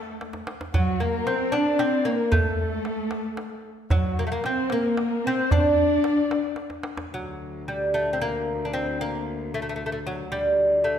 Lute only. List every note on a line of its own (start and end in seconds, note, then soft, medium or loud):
0.00 0.44 A3 medium
0.74 0.99 F#3 medium
1.00 1.25 A#3 medium
1.27 1.52 C4 medium
1.52 1.80 D4 loud
1.79 2.05 C4 loud
2.05 2.33 A#3 medium
2.32 3.61 A3 medium
3.91 4.19 F#3 medium
4.19 4.25 A#3 medium
4.27 4.31 A3 medium
4.32 4.45 A#3 medium
4.46 4.72 C4 medium
4.72 5.26 A#3 medium
5.27 5.52 C4 loud
5.52 6.54 D4 loud
7.14 7.67 F#3 medium
7.68 7.94 G3 medium
7.94 8.13 A3 medium
8.13 8.19 C4 medium
8.21 8.68 A#3 medium
8.65 8.71 D4 medium
8.73 8.97 C4 loud
9.01 9.54 A#3 medium
9.54 9.60 A3 medium
9.62 9.68 A3 medium
9.69 9.75 A3 medium
9.76 9.82 A3 medium
9.86 9.91 A3 medium
9.92 9.98 A3 medium
10.07 10.30 F#3 medium
10.32 10.86 G3 loud
10.84 10.99 A3 medium